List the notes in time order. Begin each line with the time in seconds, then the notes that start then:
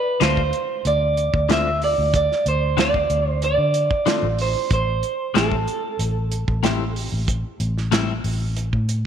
Already playing: B4
0.20 D2 D3 A3 C4 F4 C5, snare, closed hi-hat
0.37 kick
0.53 closed hi-hat
0.85 D2 D5, closed hi-hat
1.17 closed hi-hat
1.34 D2, kick
1.49 D3 A3 C4 F4 E5, snare, closed hi-hat
1.82 D5, open hi-hat
1.98 D2
2.14 D5, kick, closed hi-hat
2.32 snare
2.46 D2 C5, closed hi-hat
2.77 D3 A3 C4 F4 D5, snare, closed hi-hat
2.94 kick
3.10 D2, closed hi-hat
3.29 C5
3.42 D5, closed hi-hat
3.58 D3
3.74 closed hi-hat
3.91 kick
4.06 D3 A3 C4 F4, snare, closed hi-hat
4.22 A1
4.39 C5, open hi-hat
4.55 muted fingered electric bass stroke
4.71 A1 C5, kick, closed hi-hat
5.03 closed hi-hat
5.34 A1 A2 G3 C4 E4 A4, snare, closed hi-hat
5.52 kick
5.68 closed hi-hat
5.99 A1, closed hi-hat
6.32 closed hi-hat
6.48 A1, kick
6.63 A2 G3 C4 E4, snare, closed hi-hat
6.96 G4, open hi-hat
7.12 A1
7.28 kick, closed hi-hat
7.60 A1, closed hi-hat
7.78 snare
7.91 A2 G3 C4 E4, snare, closed hi-hat
8.24 A1, open hi-hat
8.56 closed hi-hat
8.73 A2, kick
8.89 closed hi-hat